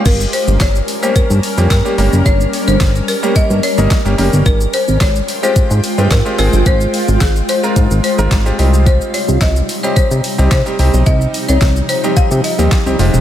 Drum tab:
CC |x---------------|----------------|----------------|----------------|
HH |x-o-x-o-x-o-x-o-|x-o-x-o-x-o-x-o-|x-o-x-o-x-o-x-o-|x-o-x-o-x-o-x-o-|
SH |xxxxxxxxxxxxxxxx|xxxxxxxxxxxxxxxx|xxxxxxxxxxxxxxxx|xxxxxxxxxxxxxxxx|
CP |----x-------x---|----x-------x---|----x-------x---|----x-------x---|
SD |----o-------o---|----o-------o---|----o-------o---|----o-------o---|
BD |o---o---o---o---|o---o---o---o---|o---o---o---o---|o---o---o---o---|

CC |----------------|----------------|
HH |x-o-x-o-x-o-x-o-|x-o-x-o-x-o-x-o-|
SH |xxxxxxxxxxxxxxxx|xxxxxxxxxxxxxxxx|
CP |----x-------x---|----x-------x---|
SD |----o-------o---|----o-------o---|
BD |o---o---o---o---|o---o---o---o---|